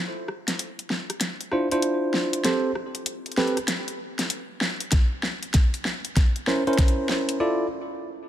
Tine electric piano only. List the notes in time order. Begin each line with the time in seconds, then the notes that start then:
1.52 D4 E4 F4 C5
1.72 D4 E4 F4 C5
2.45 C4 G4 A4 C5
3.38 C4 G4 A4 B4
6.48 C#4 E4 A#4 C5
6.67 C#4 E4 A#4 C5
7.40 E4 F4 A4 D5